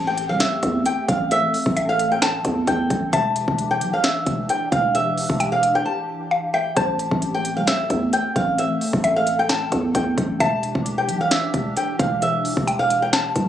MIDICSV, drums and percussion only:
0, 0, Header, 1, 2, 480
1, 0, Start_track
1, 0, Tempo, 454545
1, 1385, Time_signature, 4, 2, 24, 8
1, 14241, End_track
2, 0, Start_track
2, 0, Title_t, "Drums"
2, 185, Note_on_c, 9, 42, 76
2, 291, Note_off_c, 9, 42, 0
2, 423, Note_on_c, 9, 42, 87
2, 425, Note_on_c, 9, 38, 124
2, 529, Note_off_c, 9, 42, 0
2, 531, Note_off_c, 9, 38, 0
2, 662, Note_on_c, 9, 42, 77
2, 664, Note_on_c, 9, 36, 100
2, 768, Note_off_c, 9, 42, 0
2, 770, Note_off_c, 9, 36, 0
2, 904, Note_on_c, 9, 42, 89
2, 1010, Note_off_c, 9, 42, 0
2, 1146, Note_on_c, 9, 36, 107
2, 1147, Note_on_c, 9, 42, 74
2, 1251, Note_off_c, 9, 36, 0
2, 1252, Note_off_c, 9, 42, 0
2, 1385, Note_on_c, 9, 42, 88
2, 1491, Note_off_c, 9, 42, 0
2, 1626, Note_on_c, 9, 46, 78
2, 1732, Note_off_c, 9, 46, 0
2, 1753, Note_on_c, 9, 36, 102
2, 1859, Note_off_c, 9, 36, 0
2, 1865, Note_on_c, 9, 42, 90
2, 1970, Note_off_c, 9, 42, 0
2, 2106, Note_on_c, 9, 42, 75
2, 2211, Note_off_c, 9, 42, 0
2, 2344, Note_on_c, 9, 42, 89
2, 2346, Note_on_c, 9, 38, 124
2, 2449, Note_off_c, 9, 42, 0
2, 2451, Note_off_c, 9, 38, 0
2, 2583, Note_on_c, 9, 42, 78
2, 2585, Note_on_c, 9, 36, 99
2, 2689, Note_off_c, 9, 42, 0
2, 2690, Note_off_c, 9, 36, 0
2, 2824, Note_on_c, 9, 42, 90
2, 2825, Note_on_c, 9, 36, 106
2, 2929, Note_off_c, 9, 42, 0
2, 2931, Note_off_c, 9, 36, 0
2, 3066, Note_on_c, 9, 36, 104
2, 3067, Note_on_c, 9, 42, 69
2, 3171, Note_off_c, 9, 36, 0
2, 3172, Note_off_c, 9, 42, 0
2, 3305, Note_on_c, 9, 42, 92
2, 3306, Note_on_c, 9, 36, 111
2, 3410, Note_off_c, 9, 42, 0
2, 3411, Note_off_c, 9, 36, 0
2, 3546, Note_on_c, 9, 42, 78
2, 3652, Note_off_c, 9, 42, 0
2, 3673, Note_on_c, 9, 36, 98
2, 3779, Note_off_c, 9, 36, 0
2, 3786, Note_on_c, 9, 42, 92
2, 3891, Note_off_c, 9, 42, 0
2, 4026, Note_on_c, 9, 42, 75
2, 4132, Note_off_c, 9, 42, 0
2, 4263, Note_on_c, 9, 42, 89
2, 4265, Note_on_c, 9, 38, 124
2, 4369, Note_off_c, 9, 42, 0
2, 4371, Note_off_c, 9, 38, 0
2, 4503, Note_on_c, 9, 42, 75
2, 4504, Note_on_c, 9, 36, 94
2, 4609, Note_off_c, 9, 42, 0
2, 4610, Note_off_c, 9, 36, 0
2, 4744, Note_on_c, 9, 42, 89
2, 4850, Note_off_c, 9, 42, 0
2, 4986, Note_on_c, 9, 36, 108
2, 4987, Note_on_c, 9, 42, 71
2, 5091, Note_off_c, 9, 36, 0
2, 5092, Note_off_c, 9, 42, 0
2, 5225, Note_on_c, 9, 42, 89
2, 5330, Note_off_c, 9, 42, 0
2, 5465, Note_on_c, 9, 46, 78
2, 5571, Note_off_c, 9, 46, 0
2, 5593, Note_on_c, 9, 36, 98
2, 5699, Note_off_c, 9, 36, 0
2, 5705, Note_on_c, 9, 42, 93
2, 5811, Note_off_c, 9, 42, 0
2, 5945, Note_on_c, 9, 42, 73
2, 6051, Note_off_c, 9, 42, 0
2, 7144, Note_on_c, 9, 42, 90
2, 7145, Note_on_c, 9, 36, 114
2, 7250, Note_off_c, 9, 42, 0
2, 7251, Note_off_c, 9, 36, 0
2, 7385, Note_on_c, 9, 42, 77
2, 7491, Note_off_c, 9, 42, 0
2, 7513, Note_on_c, 9, 36, 103
2, 7618, Note_off_c, 9, 36, 0
2, 7625, Note_on_c, 9, 42, 93
2, 7730, Note_off_c, 9, 42, 0
2, 7866, Note_on_c, 9, 42, 75
2, 7971, Note_off_c, 9, 42, 0
2, 8103, Note_on_c, 9, 42, 90
2, 8105, Note_on_c, 9, 38, 126
2, 8209, Note_off_c, 9, 42, 0
2, 8211, Note_off_c, 9, 38, 0
2, 8343, Note_on_c, 9, 42, 74
2, 8344, Note_on_c, 9, 36, 101
2, 8449, Note_off_c, 9, 42, 0
2, 8450, Note_off_c, 9, 36, 0
2, 8584, Note_on_c, 9, 42, 93
2, 8690, Note_off_c, 9, 42, 0
2, 8826, Note_on_c, 9, 36, 109
2, 8827, Note_on_c, 9, 42, 70
2, 8932, Note_off_c, 9, 36, 0
2, 8933, Note_off_c, 9, 42, 0
2, 9065, Note_on_c, 9, 42, 88
2, 9171, Note_off_c, 9, 42, 0
2, 9306, Note_on_c, 9, 46, 74
2, 9412, Note_off_c, 9, 46, 0
2, 9433, Note_on_c, 9, 36, 101
2, 9539, Note_off_c, 9, 36, 0
2, 9545, Note_on_c, 9, 42, 93
2, 9650, Note_off_c, 9, 42, 0
2, 9786, Note_on_c, 9, 42, 74
2, 9892, Note_off_c, 9, 42, 0
2, 10024, Note_on_c, 9, 42, 86
2, 10026, Note_on_c, 9, 38, 126
2, 10130, Note_off_c, 9, 42, 0
2, 10132, Note_off_c, 9, 38, 0
2, 10263, Note_on_c, 9, 42, 75
2, 10265, Note_on_c, 9, 36, 102
2, 10369, Note_off_c, 9, 42, 0
2, 10370, Note_off_c, 9, 36, 0
2, 10505, Note_on_c, 9, 42, 92
2, 10506, Note_on_c, 9, 36, 108
2, 10611, Note_off_c, 9, 36, 0
2, 10611, Note_off_c, 9, 42, 0
2, 10746, Note_on_c, 9, 36, 108
2, 10747, Note_on_c, 9, 42, 72
2, 10852, Note_off_c, 9, 36, 0
2, 10853, Note_off_c, 9, 42, 0
2, 10986, Note_on_c, 9, 36, 112
2, 10986, Note_on_c, 9, 42, 90
2, 11092, Note_off_c, 9, 36, 0
2, 11092, Note_off_c, 9, 42, 0
2, 11227, Note_on_c, 9, 42, 74
2, 11333, Note_off_c, 9, 42, 0
2, 11354, Note_on_c, 9, 36, 102
2, 11460, Note_off_c, 9, 36, 0
2, 11467, Note_on_c, 9, 42, 95
2, 11572, Note_off_c, 9, 42, 0
2, 11707, Note_on_c, 9, 42, 77
2, 11813, Note_off_c, 9, 42, 0
2, 11944, Note_on_c, 9, 42, 89
2, 11946, Note_on_c, 9, 38, 124
2, 12050, Note_off_c, 9, 42, 0
2, 12052, Note_off_c, 9, 38, 0
2, 12184, Note_on_c, 9, 42, 74
2, 12185, Note_on_c, 9, 36, 95
2, 12290, Note_off_c, 9, 36, 0
2, 12290, Note_off_c, 9, 42, 0
2, 12425, Note_on_c, 9, 42, 93
2, 12530, Note_off_c, 9, 42, 0
2, 12666, Note_on_c, 9, 36, 107
2, 12667, Note_on_c, 9, 42, 72
2, 12772, Note_off_c, 9, 36, 0
2, 12773, Note_off_c, 9, 42, 0
2, 12905, Note_on_c, 9, 42, 89
2, 13011, Note_off_c, 9, 42, 0
2, 13147, Note_on_c, 9, 46, 76
2, 13252, Note_off_c, 9, 46, 0
2, 13274, Note_on_c, 9, 36, 103
2, 13379, Note_off_c, 9, 36, 0
2, 13386, Note_on_c, 9, 42, 94
2, 13492, Note_off_c, 9, 42, 0
2, 13627, Note_on_c, 9, 42, 73
2, 13732, Note_off_c, 9, 42, 0
2, 13864, Note_on_c, 9, 42, 88
2, 13866, Note_on_c, 9, 38, 125
2, 13970, Note_off_c, 9, 42, 0
2, 13972, Note_off_c, 9, 38, 0
2, 14104, Note_on_c, 9, 42, 76
2, 14105, Note_on_c, 9, 36, 98
2, 14210, Note_off_c, 9, 36, 0
2, 14210, Note_off_c, 9, 42, 0
2, 14241, End_track
0, 0, End_of_file